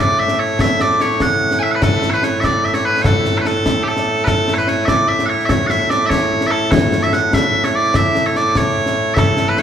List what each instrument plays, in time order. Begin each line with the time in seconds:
Already playing: bagpipes A2 A3 E4
0.00 bagpipes D5
0.19 bagpipes E5
0.28 snare
0.39 bagpipes C#5
0.59 bagpipes E5, concert bass drum, snare
0.80 bagpipes D5, snare
0.90 snare
1.00 bagpipes C#5, snare
1.10 snare
1.20 bagpipes F#5, concert bass drum, snare
1.51 snare
1.59 bagpipes E5 G#5
1.71 bagpipes F#5
1.75 bagpipes B4
1.82 bagpipes A4, concert bass drum, snare
1.93 snare
2.02 snare
2.10 bagpipes B4 C#5, snare
2.23 bagpipes C#5, snare
2.40 bagpipes E5, concert bass drum, snare
2.45 bagpipes D5
2.65 bagpipes E5
2.74 bagpipes C#5, snare
2.85 bagpipes B4
2.94 snare
3.02 bagpipes A4 C#5, concert bass drum, snare
3.25 snare
3.35 bagpipes C#5, snare
3.41 bagpipes B4, snare
3.46 bagpipes A4
3.56 snare
3.66 concert bass drum, snare
3.83 bagpipes G4, snare
3.88 bagpipes A4
3.96 snare
4.24 bagpipes A4 B4, concert bass drum, snare
4.48 snare
4.54 bagpipes C#5, snare
4.58 bagpipes B4
4.68 bagpipes C#5, snare
4.85 bagpipes D5 E5, concert bass drum, snare
5.08 bagpipes E5
5.19 snare
5.26 bagpipes C#5 F#5
5.39 snare
5.46 bagpipes E5, concert bass drum, snare
5.50 bagpipes C#5
5.67 bagpipes E5 F#5, snare
5.80 snare
5.90 bagpipes D5, snare
6.01 snare
6.06 bagpipes C#5 E5
6.10 concert bass drum, snare
6.41 snare
6.47 bagpipes E5
6.51 bagpipes A4
6.71 bagpipes C#5, concert bass drum, snare
6.82 snare
6.92 snare
7.03 bagpipes E5, snare
7.13 bagpipes F#5, snare
7.33 bagpipes E5, concert bass drum, snare
7.64 bagpipes C#5, snare
7.75 bagpipes D5
7.84 snare
7.94 bagpipes E5, concert bass drum, snare
8.15 snare
8.25 bagpipes C#5, snare
8.36 bagpipes D5, snare
8.45 snare
8.55 bagpipes C#5, concert bass drum, snare
8.86 snare
9.14 bagpipes E5, concert bass drum, snare
9.18 bagpipes A4
9.27 snare
9.37 snare
9.48 bagpipes B4, snare
9.57 bagpipes C#5, snare